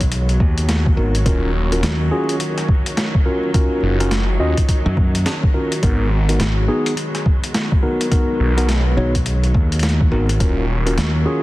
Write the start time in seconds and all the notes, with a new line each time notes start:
Already playing: B1 D#3 F#3 G#3 B3
0.01 kick, closed hi-hat
0.12 closed hi-hat
0.29 closed hi-hat
0.40 D#2, kick
0.58 closed hi-hat
0.69 snare, closed hi-hat
0.86 kick
0.97 G#1 B3 D#4 F#4 A#4
1.15 closed hi-hat
1.25 D#1 A#3 C#4 F4 F#4 A#4, kick, closed hi-hat
1.72 C#4 F4 F#4 A#4, closed hi-hat
1.83 D#2, snare, closed hi-hat
2.11 C#4 F4 F#4 G#4
2.29 closed hi-hat
2.40 closed hi-hat
2.58 cross-stick, closed hi-hat
2.69 kick
2.86 closed hi-hat
2.97 cross-stick, snare, closed hi-hat
3.15 kick
3.26 C#4 F4 F#4 A#4
3.54 C#4 D#4 F4 F#4 A#4, kick, closed hi-hat
3.83 F#1
4.00 C#4 F4 F#4 A#4, closed hi-hat
4.11 snare, closed hi-hat
4.40 D#2 C#4 F4 F#4 D#5
4.57 kick, closed hi-hat
4.69 kick, closed hi-hat
4.86 F#2
4.97 kick
5.15 closed hi-hat
5.26 snare, closed hi-hat
5.43 kick
5.54 C#4 F4 F#4 A#4
5.72 closed hi-hat
5.83 G#1 G#3 B3 D#4 F#4 A#4, kick, closed hi-hat
6.29 B3 D#4 F#4 A#4, closed hi-hat
6.40 G#1, snare, closed hi-hat
6.68 B3 D#4 F#4 G#4
6.86 closed hi-hat
6.97 closed hi-hat
7.15 cross-stick, closed hi-hat
7.26 kick
7.44 closed hi-hat
7.54 cross-stick, snare, closed hi-hat
7.72 kick
7.83 B3 D#4 F#4 A#4
8.01 closed hi-hat
8.11 B3 D#4 F#4 A#4, kick, closed hi-hat
8.40 B1
8.57 B3 D#4 F#4 A#4, closed hi-hat
8.69 snare, closed hi-hat
8.97 B1 B3 D#4 F#4 C#5
9.15 kick, closed hi-hat
9.26 closed hi-hat
9.44 closed hi-hat
9.54 D#2, kick
9.72 closed hi-hat
9.79 snare, closed hi-hat
9.83 closed hi-hat
9.89 closed hi-hat
10.01 kick
10.12 G#1 B3 D#4 F#4 A#4
10.29 closed hi-hat
10.40 D#1 D#3 F#3 A#3 C#4 F4 F#4 A#4, kick, closed hi-hat
10.86 C#4 F4 F#4 A#4, closed hi-hat
10.97 D#2, snare, closed hi-hat
11.26 C#4 F4 F#4 G#4